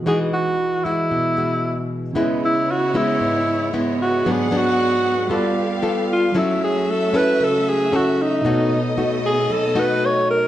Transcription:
<<
  \new Staff \with { instrumentName = "String section" } { \time 4/4 \key cis \minor \tempo 4 = 114 << { r1 | <e' cis''>1 | <gis' fis''>2 <a' f''>2 | <fis' e''>1 |
<a' dis''>1 | } \\ { r1 | b1~ | b2 g'2 | a1 |
b1 | } >> }
  \new Staff \with { instrumentName = "Alto saxophone" } { \time 4/4 \key cis \minor gis'8 fis'4 e'2 r8 | r8 e'8 fis'8 e'4. r8 fis'8 | gis'8 fis'4. r4. f'8 | e'8 gis'8 a'8 b'8 a'8 gis'8 fis'8 dis'8~ |
dis'4 r8 gis'8 a'8 b'8 cis''8 ais'8 | }
  \new Staff \with { instrumentName = "Tine electric piano" } { \time 4/4 \key cis \minor <e fis' gis' b' dis''>1 | <cis e' gis' b' dis''>1 | <fis' gis' b' d''>2 <g f' a' b' d''>2 | <fis e' a' cis''>1 |
<b, dis' fis' a' cis''>1 | }
  \new Staff \with { instrumentName = "Nylon-string guitar" } { \time 4/4 \key cis \minor << { <gis dis' fis'>4 r8 <gis fis'>4 <gis fis'>4. | <gis b e'>4 r8 <gis b e'>4. <gis b e'>4 | <fis b d'>8 <fis b d'>4. <b f' a'>8 r8 <b f' a'>4 | <cis' e' a'>4. <cis' e' a'>4. <cis' e' a'>4 |
<a dis' fis'>8 r8 <a dis' fis'>4. <a dis' fis'>4. | } \\ { e2 b,2 | cis2 gis,2 | gis,2 g2 | fis2 cis2 |
b,2 fis2 | } >> }
>>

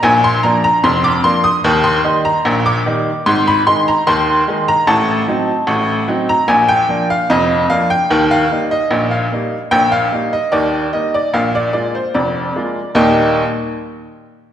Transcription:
<<
  \new Staff \with { instrumentName = "Upright piano" } { \time 2/4 \key ees \major \tempo 4 = 74 aes''16 c'''16 bes''16 bes''16 c'''16 d'''16 c'''16 ees'''16~ | ees'''16 c'''8 bes''8 d'''8. | c'''16 ces'''16 c'''16 bes''16 c'''8. bes''16 | a''4.~ a''16 bes''16 |
aes''16 g''8 f''16 ees''8 f''16 g''16~ | g''16 f''8 ees''8 f''8. | g''16 f''8 ees''16 d''8 ees''16 d''16 | f''16 d''16 d''16 c''16 d''4 |
<ees, bes, g bes ees' g' ees''>8 r4. | }
  \new Staff \with { instrumentName = "Upright piano" } { \clef bass \time 2/4 \key ees \major <bes,, bes,>8 <f bes d'>8 <f,, f,>8 <f bes d'>8 | <ees, ees>8 <ees g ees'>8 <bes,, bes,>8 <ees g ees'>8 | <aes,, aes,>8 <ees aes ees'>8 <ees, ees>8 <ees aes ees'>8 | <a,, a,>8 <fis c' ees'>8 <a,, a,>8 <fis c' ees'>8 |
<bes,, bes,>8 <f bes d'>8 <f,, f,>8 <f bes d'>8 | <ees, ees>8 <g bes ees'>8 <bes,, bes,>8 <g bes ees'>8 | <bes,, bes,>8 <g bes ees'>8 <ees, ees>8 <g bes ees'>8 | <bes,, bes,>8 <aes bes f'>8 <f,, f,>8 <aes bes f'>8 |
r2 | }
>>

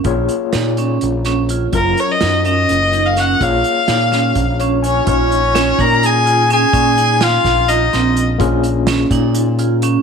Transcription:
<<
  \new Staff \with { instrumentName = "Violin" } { \time 7/8 \key des \major \tempo 4 = 126 r2. r8 | bes'8 des''16 ees''8. ees''4~ ees''16 f''16 ges''8 | f''2~ f''8 r8 des''8 | des''4. bes''8 aes''4 aes''8~ |
aes''4 f''4 ees''4 r8 | r2. r8 | }
  \new Staff \with { instrumentName = "Flugelhorn" } { \time 7/8 \key des \major r2. r8 | r2. r8 | r2. des'8 | des'4. bes'8 aes'4 aes'8~ |
aes'4 f'4 ees'4 r8 | r2. r8 | }
  \new Staff \with { instrumentName = "Tine electric piano" } { \time 7/8 \key des \major << { r2. r8 | r2. r8 | r2 r8 des''8 aes''8 | r2. r8 |
r2. r8 | r2. r8 | } \\ { <bes f' aes' des''>2.~ <bes f' aes' des''>8 | <ges des' f' bes'>2.~ <ges des' f' bes'>8 | <bes f' aes' des''>2.~ <bes f' aes' des''>8 | <des' ees' f'>2.~ <des' ees' f'>8~ |
<des' ees' f'>2.~ <des' ees' f'>8 | <bes des' f' aes'>2.~ <bes des' f' aes'>8 | } >> }
  \new Staff \with { instrumentName = "Vibraphone" } { \time 7/8 \key des \major f'4 ees'8 des'4 des'8 f'8 | f'4 ees'8 des'4 ees'8 des'8 | f'4 ees'8 des'4 des'8 f'8 | f'4 des'8 ees'4 f'8 des'8 |
des'8 ees'8 f'4 f'8 c'4 | f'4 des'8 ees'4 f'8 des'8 | }
  \new Staff \with { instrumentName = "Picked electric bass" } { \clef bass \time 7/8 \key des \major bes,,8 r8 bes,4 bes,,4. | ges,,8 r8 ges,4 ges,,4. | bes,,8 r8 bes,4 bes,,4. | bes,,4. bes,2 |
bes,4. bes,,4 bes,,4 | bes,,4. bes,2 | }
  \new DrumStaff \with { instrumentName = "Drums" } \drummode { \time 7/8 <hh bd>8 hh8 <hh sn>8 hh8 hh8 <hh sn>8 hh8 | <hh bd>8 hh8 <hh sn>8 hh8 hh8 hh8 <hh sn>8 | <hh bd>8 hh8 <hh sn>8 <hh sn>8 <hh bd>8 hh8 hh8 | <hh bd>8 hh8 <hh sn>8 <hh bd>8 hh8 hh8 hh8 |
<hh bd>8 hh8 <hh sn>8 <hh bd sn>8 hh8 <hh sn>8 hh8 | <hh bd>8 hh8 <hh sn>8 <hh bd>8 hh8 hh8 hh8 | }
>>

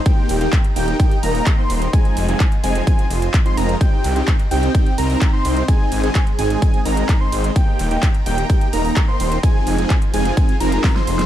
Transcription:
<<
  \new Staff \with { instrumentName = "Analog synth lead" } { \time 4/4 \key ees \major \tempo 4 = 128 g''8. g''8 r16 g''8 g''8 bes''8. c'''8. | aes''8. aes''8 r16 aes''8 aes''8 r8. c'''16 bes''8 | g''8. g''8 r16 g''8 g''8 bes''8. c'''8. | aes''8. aes''8 r16 aes''8 r8 bes''8. c'''8. |
g''8. g''8 r16 g''8 g''8 bes''8. c'''8. | aes''8. aes''8 r16 aes''8 aes''8 bes''8. c'''8. | }
  \new Staff \with { instrumentName = "Analog synth pad" } { \time 4/4 \key ees \major <ees' ees'' g'' bes''>1 | <f' c'' aes''>1 | <c' c'' g''>1 | <aes aes'>1 |
<ees' g'' bes''>1 | <f' c'' aes''>1 | }
  \new Staff \with { instrumentName = "Supersaw synth" } { \time 4/4 \key ees \major <bes ees' g'>8. <bes ees' g'>8 r16 <bes ees' g'>8 <bes g'>8 <bes ees' bes'>8. <bes ees' c''>8. | <f aes ees' aes'>8. <f aes c' ees' aes'>8 r16 <f aes c' ees' aes'>8 <aes aes'>8 r8. <f aes c' ees' c''>16 <f aes c' ees' bes'>8 | <c' ees' g'>8. <c' ees' g'>8 r16 <c' ees' g'>8 r8 <c' ees' bes'>8. <c' ees' c''>8. | <c' ees' aes'>8. <c' ees' aes'>8 r16 <c' ees' aes'>8 <c' ees' aes'>8 <c' ees' bes'>8. <c' ees' c''>8. |
<bes ees' g'>8. <bes ees' g'>8 r16 <bes ees' g'>8 <bes ees' g'>8 <bes ees' bes'>8. <bes ees' c''>8. | <f aes c' ees' aes'>8. <f aes c' ees' aes'>8 r16 <f aes c' ees' aes'>8 <f c' ees'>8 <f aes c' ees' bes'>8. <f aes c' ees' c''>8. | }
  \new Staff \with { instrumentName = "Detuned saw bass" } { \clef bass \time 4/4 \key ees \major r8 ees,,8 r8 ees,,8 r8 ees,,8 r8 ees,,8 | r8 f,,8 r8 f,,8 r8 f,,8 r8 f,,8 | r8 c,8 r8 c,8 r8 c,8 r8 c,8 | r8 aes,,8 r8 aes,,8 r8 aes,,8 r8 aes,,8 |
r8 ees,,8 r8 ees,,8 r8 ees,,8 r8 ees,,8 | r8 f,,8 r8 f,,8 r8 f,,8 r8 f,,8 | }
  \new DrumStaff \with { instrumentName = "Drums" } \drummode { \time 4/4 <hh bd cymr>8 <hho cymr>16 hh16 <hc hh bd cymr>16 hh16 <hho cymr>16 hh16 <hh bd cymr>16 hh16 <hho cymr>16 hho16 <hc hh bd cymr>8 <hho cymr>16 hh16 | <hh bd cymr>16 hh16 <hho cymr>16 hh16 <hc hh bd cymr>16 hh16 <hho cymr>16 hh16 <hh bd cymr>16 hh16 <hho cymr>16 hh16 <hc hh bd cymr>16 hh16 <hho cymr>16 hh16 | <hh bd cymr>8 <hho cymr>16 hh16 <hc hh bd cymr>16 hh16 <hho cymr>16 hh16 <hh bd cymr>16 hh16 <hho cymr>16 hho16 <hc hh bd cymr>8 <hho cymr>16 hh16 | <hh bd cymr>8 <hho cymr>16 hh16 <hc hh bd cymr>16 hh16 <hho cymr>16 hh16 <hh bd cymr>16 hh16 <hho cymr>16 hh16 <hc hh bd cymr>8 <hho cymr>16 hh16 |
<hh bd cymr>8 <hho cymr>16 hh16 <hc hh bd cymr>16 hh16 <hho cymr>16 hh16 <hh bd cymr>16 hh16 <hho cymr>16 hho16 <hc hh bd cymr>8 <hho cymr>16 hh16 | <hh bd cymr>8 <hho cymr>16 hh16 <hc hh bd cymr>16 hh16 <hho cymr>16 hh16 <hh bd cymr>16 hh16 <hho cymr>16 hh16 <hc hho bd cymr sn>16 sn16 <hho cymr>16 <hh sn>16 | }
>>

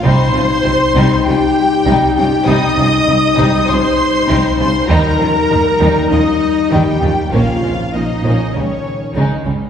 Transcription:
<<
  \new Staff \with { instrumentName = "Violin section" } { \time 4/4 \key c \phrygian \tempo 4 = 99 c'''2 g''4. g''8 | ees'''2 c'''4. c'''8 | bes''2 ees''4 g''4 | f''4 ees''4 des''4 r4 | }
  \new Staff \with { instrumentName = "Viola section" } { \time 4/4 \key c \phrygian c''2 g'4. g'8 | ees''2 c''4. c''8 | bes'2 ees'4 g'4 | f'4 ees'4 des'4 r4 | }
  \new Staff \with { instrumentName = "Violin section" } { \time 4/4 \key c \phrygian <g ees'>8 <des' f'>8 <g ees'>8 <g ees'>8 <des' f'>8 r8 <g ees'>8 <des' f'>8 | <g ees'>8 <des' f'>8 <g ees'>8 <g ees'>8 <des' f'>8 r8 <g ees'>8 <des' f'>8 | <g ees'>8 <des' f'>8 <g ees'>8 <g ees'>8 <des' f'>8 r8 <g ees'>8 <des' f'>8 | <bes des'>8 <aes c'>8 <bes des'>8 <bes des'>8 <g des'>8 r8 <aes ees'>8 <g des'>8 | }
  \new Staff \with { instrumentName = "French horn section" } { \clef bass \time 4/4 \key c \phrygian << { ees'1~ | ees'1 | ees'1 | des2.~ des8 r8 | } \\ { g1~ | g1 | g1 | f2 ees4. r8 | } >> }
  \new Staff \with { instrumentName = "Cello section" } { \clef bass \time 4/4 \key c \phrygian c8 c8 c8 c8 c8 r8 c8 c8 | c8 c8 c8 c8 c8 r8 c8 c8 | ees8 ees8 ees8 ees8 ees8 r8 ees8 ees8 | bes,8 bes,8 bes,8 bes,8 des8 r8 des8 des8 | }
  \new Staff \with { instrumentName = "Double bass section" } { \clef bass \time 4/4 \key c \phrygian c,8 c,8 c,8 c,8 c,8 r8 c,8 c,8 | c,8 c,8 c,8 c,8 c,8 r8 c,8 c,8 | ees,8 ees,8 ees,8 ees,8 ees,8 r8 ees,8 ees,8 | bes,,8 bes,,8 bes,,8 bes,,8 des,8 r8 des,8 des,8 | }
>>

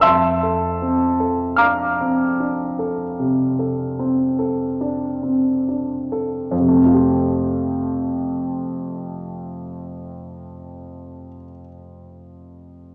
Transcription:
\new Staff \with { instrumentName = "Grand piano" } { \time 4/4 \key f \major \tempo 4 = 37 << { <e'' a'' c''' e'''>4 <f'' bes'' d''' f'''>2 r4 | <f, c a c' f' g'>1 | } \\ { f,16 a'16 c'16 a'16 d'16 c'16 d'16 a'16 c16 a'16 c'16 a'16 d'16 c'16 d'16 a'16 | r1 | } >> }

